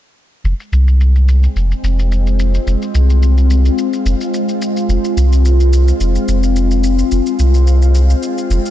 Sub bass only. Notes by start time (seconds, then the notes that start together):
0.44 F1
0.72 C2
1.55 F1
1.83 F1
2.66 F1
2.94 C2
4.05 F1
4.88 F1
5.16 C2
6.00 F1
6.28 F1
7.11 F1
7.39 C2
8.50 F1